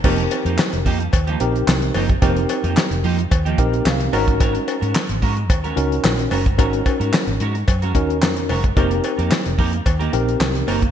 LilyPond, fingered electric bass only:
\new Staff \with { instrumentName = "Fingered electric bass" } { \clef bass \time 4/4 \key aes \mixolydian \tempo 4 = 110 f,,8 r16 f,16 r16 f,,16 f,8 ees,8 bes,,8 c,8 ges,,8 | f,,8 r16 f,16 r16 f,,16 f,8 ees,8 bes,,8 c,8 aes,,8~ | aes,,8 r16 aes,16 r16 aes,,16 aes,8 ees,8 des,8 bes,,8 ges,,8 | aes,,8 r16 aes,16 r16 aes,,16 aes,8 ges,8 ees,8 f,8 ges,,8 |
f,,8 r16 f,16 r16 f,,16 f,8 ees,8 bes,,8 c,8 ges,,8 | }